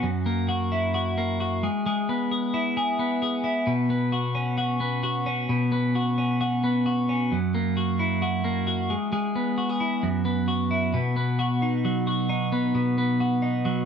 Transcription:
clean electric guitar
0.03 F#2
0.26 A#3
0.49 F#4
0.72 E4
0.94 F#4
1.18 A#3
1.40 F#4
1.63 G#3
1.86 G#3
2.09 B3
2.32 G#4
2.54 E4
2.77 G#4
2.99 B3
3.22 G#4
3.44 E4
3.67 B2
3.90 B3
4.12 F#4
4.35 C#4
4.58 F#4
4.80 B3
5.03 F#4
5.26 C#4
5.49 B2
5.72 B3
5.95 F#4
6.18 C#4
6.41 F#4
6.64 B3
6.86 F#4
7.09 C#4
7.32 F#2
7.55 A#3
7.77 F#4
7.99 E4
8.22 F#4
8.44 A#3
8.67 F#4
8.90 G#3
9.13 G#3
9.36 B3
9.58 F#4
9.70 G#4
9.80 E4
10.03 F#2
10.25 B3
10.48 F#4
10.71 E4
10.94 B2
11.16 B3
11.39 F#4
11.62 D#4
11.85 F#3
12.07 F#4
12.29 D#4
12.52 B3
12.75 B2
12.98 B3
13.20 F#4
13.42 D#4
13.65 F#3

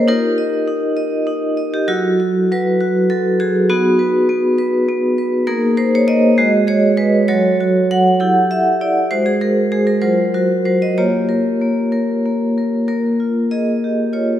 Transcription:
vibraphone
Already playing: A#3 C#4 G#4 A#4 C5 C#5
0.08 D#4 F4 G4 A#4
0.38 D#5
0.68 D#4
0.97 D#5
1.27 D#4
1.57 D#5
1.74 G4
1.88 F#3 E4 F#4 A4
2.20 F#4
2.52 F#3 B4
2.81 F#4
3.10 F#3 A4
3.40 F#4 G#4
3.70 B3 D#4 F#4 G#4
3.99 B4
4.29 B3
4.58 B4
4.89 B3
5.18 B4
5.47 A#3 D#4 G#4 A#4
5.77 A#4 C5
5.95 C#5
6.08 A#3 D#5
6.38 G#3 F#4 G#4
6.67 G#4 C#5
6.97 G#3 B4
7.28 F#3 F#4 A4 C#5
7.61 F#4
7.91 F#3 F#5
8.20 E4 G4 A4
8.51 E5
8.81 E4 D5
9.11 G#3 F#4 C5
9.26 G#4
9.41 G#4 A#4
9.72 G#3 G#4
9.87 A#4
10.02 F#3 F4 A#4 C5
10.34 F#4 A#4
10.65 F#3 C5
10.82 D#5
10.98 A#3 F4 G4 C#5
11.29 A#4
11.61 A#3
11.92 A#4
12.26 A#3
12.58 A#4
12.88 A#3 A#4
13.20 F4
13.51 G#4 D#5
13.84 G4
14.13 F4 C#5

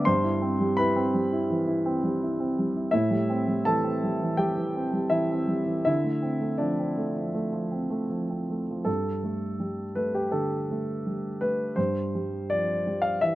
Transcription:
grand piano
0.05 G2 C5 C6
0.24 E4
0.42 C4
0.60 G3
0.77 E4 B4 B5
0.96 C4
1.14 G3
1.32 E4
1.50 E3
1.67 E4
1.86 C4
2.03 G3
2.22 E4
2.40 C4
2.59 G3
2.76 E4
2.91 A2 E4 E5
3.11 G3
3.29 C4
3.48 G3
3.65 E3 A4 A5
3.84 C4
4.04 G3
4.21 E3
4.37 G3 G4 G5
4.57 E3
4.76 C4
4.93 G3
5.10 E3 E4 E5
5.31 C4
5.48 G3
5.66 E3
5.85 D3 E4 E5
6.04 A3
6.22 C4
6.41 A3
6.58 F3 D4 D5
6.79 C4
6.98 A3
7.16 F3
7.35 A3
7.53 F3
7.71 C4
7.90 A3
8.10 F3
8.29 C4
8.50 A3
8.71 F3
8.85 G2 A4
9.24 A3
9.60 G3
9.95 A3 B4
10.15 G4
10.32 D3 A4
10.71 A3
11.07 G3
11.41 A3 B4
11.76 G2 C5
12.15 G3
12.50 F3 D5
12.87 G3
13.02 F5
13.21 E3 E5

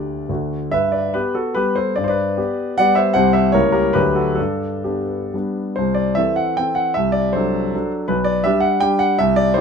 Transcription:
grand piano
Already playing: D2 D4 G4 A4 D5
0.29 D2 A3 D4 F#4
0.71 G2 B4 E5
0.92 B4 D5
1.14 B3 G4 B4
1.35 F#4 A4
1.55 G3 B3 G4 B4
1.76 A4 C5
1.96 G2 D5
2.04 C5 D5
2.09 B4
2.37 B3 G4
2.78 G3 B3 G4 D5 F#5
2.95 C5 E5
3.14 C2 G3 C4 G4 C5 F#5
3.33 C5 E5
3.52 C#2 G3 A#3 E4 A#4 C#5
3.72 G4 A#4
3.93 D2 F#3 A3 D4 G4 B4
4.15 F#4 A4
4.35 G2 D4 A4
4.84 B3 D4 G4
5.34 G3 B3 D4
5.76 C2 C5
5.94 D5
6.15 E3 C4 A4 E5
6.36 F#5
6.57 E3 C4 A4 G5
6.75 F#5
6.94 C2 E5
7.12 D5
7.33 F#3 D4 A4 C5
7.74 F#3 D4 A4
8.08 B1 B4
8.24 D5
8.44 G3 D4 G4 E5
8.60 F#5
8.80 G3 D4 G4 G5
8.99 F#5
9.19 C2 E5
9.36 D5
9.54 G3 E4 G4 C5

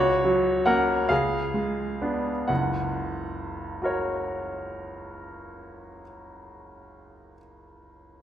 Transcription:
grand piano
Already playing: C#2 F#4 C#5
0.24 F#3
0.66 A#3 C#4 A#4 F#5
1.09 C#2 G#4 F5
1.54 G#3
2.02 B3 D4
2.48 F#1 C#2 F#5
3.82 F#4 A#4 C#5

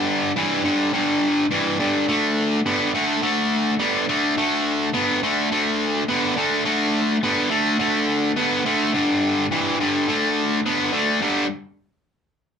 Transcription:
distorted electric guitar
Already playing: G2 D3
0.36 G2 E3
0.64 G2 D3
0.93 G2 D3
1.51 G2 E3
1.80 G2 D3
2.08 D3 A3
2.66 D3 B3
2.94 D3 A3
3.23 D3 A3
3.80 D3 B3
4.09 D3 A3
4.37 D3 A3
4.93 D3 B3
5.23 D3 A3
5.52 D3 A3
6.08 D3 B3
6.37 D3 A3
6.65 D3 A3
7.23 D3 B3
7.50 D3 A3
7.79 D3 A3
8.36 D3 B3
8.65 D3 A3
8.94 G2 D3
9.51 G2 E3
9.80 G2 D3
10.08 D3 A3
10.66 D3 B3
10.93 D3 A3
11.21 G2 D3 G3

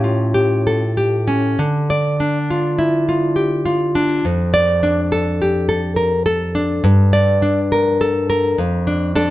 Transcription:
nylon-string guitar
Already playing: A2 C#4 G4
0.04 F4
0.34 G4
0.67 A4
0.97 G4
1.27 C#4
1.59 D3
1.90 D5
2.20 D4
2.50 F4
2.79 E4
3.09 F4
3.36 G4
3.65 F4
3.95 D4
4.25 F2
4.54 D5
4.83 D4
5.12 A4
5.42 G4
5.69 A4
5.96 A#4
6.26 A4
6.55 D4
6.84 G2
7.13 D5
7.42 D4
7.72 A#4
8.01 A4
8.30 A#4
8.58 F2
8.87 D4
9.16 D4 A4

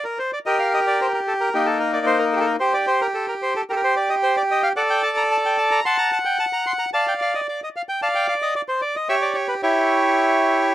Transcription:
bandoneon
0.04 A#4
0.19 C5
0.33 D5
0.46 G4 A#4 D#5
0.59 F5
0.74 D#5
0.87 D5
1.01 C5
1.14 A#4
1.28 A4
1.41 A#4
1.54 A#3 D#4 G4
1.66 A4
1.80 A#4
1.93 D5
2.06 C5
2.19 A#4
2.36 G4
2.40 A4
2.47 A#4
2.60 G4 C5
2.74 D5
2.87 C5
3.01 A#4
3.14 A4
3.28 A#4
3.42 C5
3.56 A4
3.70 G4 A4 A#4
3.76 A#4
3.84 C5
3.97 D5
4.10 D#5
4.23 C5
4.37 D5
4.51 D#5
4.63 F5
4.76 A4 D5 F#5
4.90 G5
5.03 A5
5.17 A#5
5.31 A5
5.46 G5
5.58 A5
5.71 A#5
5.85 F#5 A5 C6
5.98 A#5
6.13 A5
6.25 G5
6.40 A5
6.53 A#5
6.67 C6
6.79 A#5
6.93 D5 F5 A5
7.08 G5
7.22 F5
7.35 D#5
7.49 D5
7.64 D#5
7.76 F5
7.89 G5
8.02 D5 F5 A5
8.15 G5
8.28 F5
8.42 D#5
8.56 D5
8.68 C5
8.82 D5
8.96 D#5
9.09 G4 C#5 E5
9.22 D5
9.34 C#5
9.48 B4
9.63 E4 G4 C#5

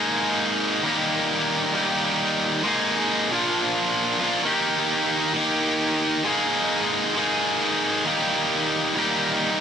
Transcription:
distorted electric guitar
Already playing: G#3 A#3 D#4 G#4
0.83 D#3 G3 A#3 D#4 G4
1.73 D#3 G3 A#3 D#4 G4
2.63 G#3 A#3 D#4
2.67 G#4
3.30 A#2 F3 A#3 D4 F4
4.21 F3 A#3 D4 F4
4.25 A#2
4.43 D#3 A#3 D#4
4.47 G4
5.34 D#3 A#3 D#4 G4
6.25 G#3 A#3 D#4 G#4
7.15 G#3 A#3 D#4 G#4
8.05 D#3 G3 A#3 D#4 G4
8.95 D#3 G3 A#3 D#4 G4

